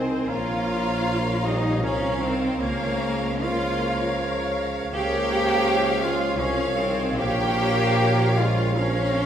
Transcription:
Already playing: tuba C2, double bass section C2, french horn section D#3, bassoon D#3, cello section C4, cor anglais C4, viola section G#4 C5, violin section C5, clarinet C5, flute G#5
0.27 tuba A#1, double bass section A#1, bassoon F3, french horn section A#3, cor anglais F4, cello section F4, viola section A#4 C#5, clarinet C#5, violin section F5, flute A#5
1.44 french horn section G3, cor anglais D#4, cello section D#4, violin section D#5
1.82 tuba C2, double bass section C2, french horn section F3, bassoon F3, cor anglais C#4, cello section C#4, viola section A#4 C#5, clarinet C#5, violin section C#5 F5, flute A#5
2.20 french horn section D#3, cor anglais C4, cello section C4, violin section C5
2.59 double bass section C#2, tuba C#2, french horn section C#3, bassoon F3, cor anglais A#3, cello section A#3, violin section A#4 F5, viola section A#4 C#5, clarinet C#5, flute F5
3.40 bassoon F3, french horn section A#3, cor anglais F4, cello section F4, viola section A#4 C#5, clarinet C#5, violin section F5, flute F5
4.92 double bass section C#2, tuba C#2, bassoon F3, french horn section A#3, cor anglais G4, cello section G4, viola section G#4 C#5, clarinet C#5, violin section F5 G5, flute F5
6.03 french horn section G#3, cor anglais F4, cello section F4, violin section F5
6.37 double bass section C2, tuba C2, bassoon F3, french horn section F3, cello section C#4, cor anglais C#4, viola section G#4 C#5, clarinet C#5, violin section C#5 F5, flute F5
6.76 french horn section D#3, cor anglais C4, cello section C4, violin section C5
7.16 tuba A#1, double bass section A#1, bassoon F3, french horn section A#3, cor anglais G4, cello section G4, viola section A#4 C#5, clarinet C#5, flute F5, violin section F5 G5
8.35 french horn section G#3, cello section F4, cor anglais F4, violin section F5
8.74 french horn section F3, bassoon F3, cello section C#4, cor anglais C#4, viola section A#4 C#5, violin section C#5 F5, clarinet C#5, flute F5

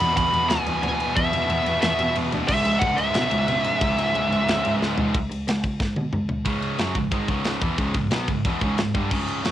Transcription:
Already playing: lead electric guitar B5
0.00 cello E2, ride
0.06 distorted electric guitar E2 B2
0.13 distorted electric guitar E2 B2, cello E2, lead electric guitar B5, kick
0.17 distorted electric guitar E2, ride
0.22 distorted electric guitar B2
0.29 distorted electric guitar E2 B2
0.33 cello E2, distorted electric guitar E2, ride
0.38 distorted electric guitar B2
0.43 distorted electric guitar E2 B2
0.49 cello D2, distorted electric guitar E2 B2, lead electric guitar G#5, snare, ride
0.59 distorted electric guitar E2 B2
0.66 cello E2, distorted electric guitar E2 B2, ride
0.75 distorted electric guitar E2 B2
0.82 cello D2, distorted electric guitar E2 B2, lead electric guitar G#5, ride
0.91 distorted electric guitar E2 B2
0.98 distorted electric guitar E2 B2, ride
1.05 distorted electric guitar E2 B2
1.15 distorted electric guitar E2 B2, cello E2, lead electric guitar E5, kick, ride
1.22 distorted electric guitar E2 B2
1.30 distorted electric guitar E2 B2, cello E2, ride
1.37 distorted electric guitar E2 B2
1.46 distorted electric guitar E2 B2, cello E2, ride
1.53 distorted electric guitar E2 B2
1.60 distorted electric guitar E2 B2
1.66 cello E2, distorted electric guitar E2 B2, ride
1.77 distorted electric guitar E2 B2
1.82 cello E2, lead electric guitar E5, snare, ride
1.86 distorted electric guitar E2 B2
1.93 distorted electric guitar E2 B2
1.99 distorted electric guitar E2 B2, cello B2, ride
2.09 distorted electric guitar E2 B2
2.15 distorted electric guitar E2 B2, cello E2, ride
2.25 distorted electric guitar E2 B2
2.32 cello D2, distorted electric guitar E2 B2, ride
2.40 distorted electric guitar E2 B2
2.47 distorted electric guitar C#2 G#2, cello C#2, lead electric guitar E5, kick, crash
2.54 distorted electric guitar C#2 G#2
2.62 distorted electric guitar C#2 G#2, cello C#2, ride
2.71 distorted electric guitar C#2 G#2
2.79 distorted electric guitar C#2 G#2, cello C#2, lead electric guitar F#5, kick, ride
2.87 distorted electric guitar C#2 G#2
2.93 distorted electric guitar C#2 G#2, lead electric guitar E5
2.97 cello C#2, distorted electric guitar C#2, ride
3.03 distorted electric guitar G#2
3.10 distorted electric guitar C#2 G#2
3.14 distorted electric guitar C#2 G#2, cello B2, snare, ride
3.25 distorted electric guitar C#2 G#2
3.31 cello C#2, distorted electric guitar C#2 G#2, ride
3.40 distorted electric guitar C#2 G#2
3.47 distorted electric guitar C#2 G#2, cello B2, ride
3.55 distorted electric guitar C#2 G#2
3.64 distorted electric guitar C#2 G#2, ride
3.72 distorted electric guitar C#2 G#2
3.80 distorted electric guitar C#2 G#2, cello C#2, kick, ride
3.88 distorted electric guitar C#2 G#2
3.96 distorted electric guitar C#2 G#2, cello C#2, ride
4.04 distorted electric guitar C#2 G#2
4.11 distorted electric guitar C#2 G#2, cello C#2, ride
4.19 distorted electric guitar C#2 G#2
4.28 distorted electric guitar C#2 G#2, cello C#2
4.32 distorted electric guitar C#2, ride
4.37 distorted electric guitar G#2
4.42 distorted electric guitar C#2 G#2
4.48 cello C#2, distorted electric guitar C#2 G#2, snare, ride
4.58 distorted electric guitar C#2 G#2
4.65 distorted electric guitar C#2 G#2, cello G#2, ride
4.74 distorted electric guitar C#2 G#2
4.81 distorted electric guitar C#2 G#2, cello C#2, snare
4.89 distorted electric guitar C#2 G#2
4.97 distorted electric guitar C#2 G#2, cello C#2, floor tom
5.05 distorted electric guitar C#2 G#2
5.14 cello C#2, kick, ride
5.30 cello C#2, ride
5.48 cello C#2, snare, ride
5.64 cello C#2, kick, ride
5.80 cello G#2, kick, snare
5.96 cello B2, high tom
6.13 cello C#2, mid tom
6.29 cello C#2, floor tom
6.45 distorted electric guitar C#2 G#2 C#3, cello C#2, kick, ride
6.62 ride
6.79 cello F#2, distorted electric guitar F#2 C#3 F#3, snare, ride
6.95 distorted electric guitar C#2 G#2, cello C#2, kick, ride
7.11 distorted electric guitar G#2 D#3 G#3, cello G#2, kick, ride
7.28 distorted electric guitar C#2 G#2 C#3, cello C#2, kick, ride
7.44 snare, ride
7.61 distorted electric guitar E2 B2 E3, cello E2, kick, ride
7.78 distorted electric guitar C#2 G#2 C#3, cello C#2, kick, ride
7.94 cello C#2, distorted electric guitar C#2 G#2, kick, ride
8.11 cello B2, distorted electric guitar B2 F#3 B3, snare, ride
8.28 cello C#2, distorted electric guitar C#2 G#2, kick, ride
8.45 cello E2, distorted electric guitar E2 B2 E3, kick, ride
8.61 cello C#2, distorted electric guitar C#2 G#2 C#3, kick, ride
8.78 distorted electric guitar C#2 G#2, cello C#2, snare, ride
8.94 distorted electric guitar G2 D3 G3, cello G2, kick, ride
9.10 distorted electric guitar C#2 G#2 C#3, cello C#2, kick, crash
9.28 ride
9.43 distorted electric guitar F#2 C#3 F#3, cello F#2, snare, ride

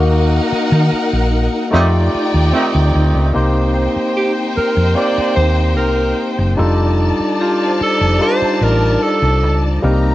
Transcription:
Already playing: fingered electric bass D#2, tine electric piano A#3 D#4 F#4 D#5, string section D#4 A#4 F#5
0.52 muted fingered electric bass stroke
0.72 fingered electric bass D#3
0.92 muted fingered electric bass stroke
1.13 fingered electric bass A#1
1.71 fingered electric bass F2, horn section D#3 A3 C4 D#4, tine electric piano A3 D#4 F4 G4 C#5, string section D#4 D5 G5
1.81 tine electric piano D5
2.15 muted fingered electric bass stroke
2.34 fingered electric bass D#2
2.53 horn section D#3 A3 C4 D#4
2.75 fingered electric bass D2
2.95 fingered electric bass D2
3.15 fingered electric bass C#2
3.33 fingered electric bass C2, tine electric piano A#3 C4 D#4 G4 C5, string section D#4 C5 G5
3.74 vibraphone C5
3.96 muted fingered electric bass stroke
4.17 alto saxophone G4
4.57 alto saxophone A#4, muted fingered electric bass stroke
4.77 fingered electric bass F2
4.95 tine electric piano A#3 C4 D#4 G4 C5, alto saxophone D5
5.18 muted fingered electric bass stroke
5.36 fingered electric bass D#2, alto saxophone C5
5.77 fingered electric bass C2, alto saxophone A#4
6.39 fingered electric bass F#1
6.57 fingered electric bass F1, tine electric piano G3 D4 D#4 F4 A4, string section D#4 D5 A5
7.20 muted fingered electric bass stroke
7.40 alto saxophone F4, vibraphone G4
7.66 vibraphone C5
7.81 alto saxophone A4, muted fingered electric bass stroke
7.93 vibraphone D5
8.01 fingered electric bass F1
8.18 tine electric piano G3 D4 D#4 F4 A5, alto saxophone C5
8.42 muted fingered electric bass stroke
8.61 fingered electric bass A1, alto saxophone A#4
9.02 alto saxophone A4
9.22 fingered electric bass C2
9.43 fingered electric bass C#2
9.82 fingered electric bass C2, tine electric piano G3 A#3 C4 D#4 A#4, string section D#4 G4 A#5

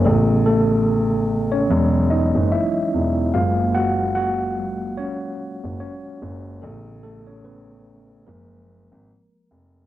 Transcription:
0.05 grand piano A1, tine electric piano C#3 A3 B3 G#4 A4
0.46 tine electric piano A3 A4
1.52 tine electric piano C#4 C#5
1.69 grand piano E1, tine electric piano E3 F#3 G#3
2.10 tine electric piano D#4 D#5
2.35 grand piano F#1
2.52 tine electric piano E4 E5
2.94 grand piano E1
3.34 grand piano F#1, tine electric piano F#3 G#3 A#3 F4 F5
3.75 tine electric piano F#4 F#5
4.15 tine electric piano F#4 F#5
4.57 tine electric piano F#3 G#3 A#3
4.98 tine electric piano C#4 C#5
5.64 grand piano F#1
5.80 tine electric piano C#4 C#5
6.22 grand piano F#1
6.62 grand piano A1, tine electric piano C#3 A3 B3 G#4 A4
7.03 tine electric piano A3 A4
7.27 tine electric piano C#4 C#5
7.45 tine electric piano B3 B4
8.27 grand piano F#1, tine electric piano F3 G#3 A#3 A#4
8.92 grand piano G#1
9.51 grand piano F1

